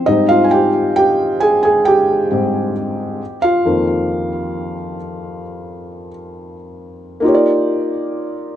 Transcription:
0.06 G#2 G3 C4 D#4 D#5
0.29 F4 F5
0.44 G#5
0.51 G4 G5
0.96 G4 G5
1.40 G#4 G#5
1.63 G#4 G#5
1.85 G4 G5
2.32 G#2 G3 C4
3.42 F4 F5
3.65 F2 D#3 A#3
7.20 A#3 D#4 F4
7.26 G4 C#5
7.35 D5

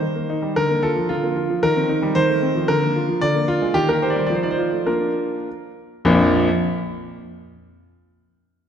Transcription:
Already playing: C5
0.02 D#3
0.16 A#3
0.30 D#4
0.42 G3
0.56 D3 A#4
0.70 A#3
0.83 F4 A4
0.96 F3
1.09 D3 F4
1.23 A#3
1.36 F4
1.50 F3
1.63 D#3 A#4
1.76 C4
1.89 D#4
2.02 G3
2.15 D#3 C5
2.29 A3
2.42 C4
2.56 F3
2.68 D3 A#4
2.82 A#3
2.96 F4
3.09 F3
3.21 D3 D5
3.35 A#3
3.48 F4
3.62 G#3
3.74 D#3 G4
3.88 A#3 A#4
4.02 G4 C5
4.10 D5
4.16 G3 C5
4.27 F3 D5
4.35 C5
4.43 D#4 D5
4.51 C5
4.58 F4
4.72 A3
4.86 A#3 D4 F4 A#4
6.05 A#1 F2 F3 A#3 D4 F4

